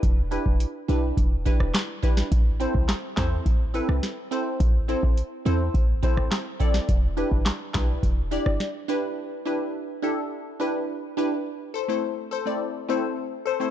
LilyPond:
<<
  \new Staff \with { instrumentName = "Synth pluck" } { \time 4/4 \key a \dorian \tempo 4 = 105 r8 <d' e' g' b'>16 r8. <d' e' g' b'>16 r8. <d' e' g' b'>16 r8. <d' e' g' b'>16 r16 | r8 <c' e' a' c''>16 r8. <c' e' a' c''>16 r8. <c' e' a' b'>16 r8. <c' e' a' c''>16 r16 | r8 <c' e' a' c''>16 r8. <c' e' a' c''>16 r8. <c' e' a' c''>16 r8. <c' e' a' d''>16 r16 | r8 <d' e' g' b'>16 r8. <d' e' g' b'>16 r8. <d' e' g' d''>16 r8. <d' e' g' b'>16 r16 |
r8 <d' e' g' b'>16 r8. <d' e' g' a'>16 r8. <d' e' g' b'>16 r8. <d' e' g' b'>16 r16 | r8 <a' c''>16 <a c' e' a' c''>16 r8 <a' c''>16 <a c' e' a' d''>16 r8 <a c' e' a' c''>16 r8. <a' c''>16 <a c' e' a' c''>16 | }
  \new Staff \with { instrumentName = "808-style bass" } { \clef bass \time 4/4 \key a \dorian e,,8. e,,16 r8 b,,8 e,,8. e,,16 r4 | a,,8. c,16 r8 e,8 a,,8. c,16 r4 | a,,8. a,,16 r8 e,8 a,,8. a,,16 r4 | e,,8. g,,16 r8 b,,8 e,,8. g,,16 r4 |
r1 | r1 | }
  \new DrumStaff \with { instrumentName = "Drums" } \drummode { \time 4/4 <hh bd>8 hh16 bd16 hh8 hh8 <hh bd>8 <hh bd>16 ss16 <hc hh sn>8 <hh bd>16 sn16 | <hh bd>8 hh16 bd16 <hc hh sn>8 <hc hh bd sn>8 <hh bd>8 hh16 ss16 <hh sn>8 hh8 | <hh bd>8 hh16 bd16 hh8 hh8 <hh bd>8 <hh bd>16 ss16 <hc hh sn>8 <hh bd>16 sn16 | <hh bd>8 hh16 bd16 <hc hh sn>8 <hc hh bd sn>8 <hh bd>8 hh16 ss16 <hh sn>8 hh8 |
r4 r4 r4 r4 | r4 r4 r4 r4 | }
>>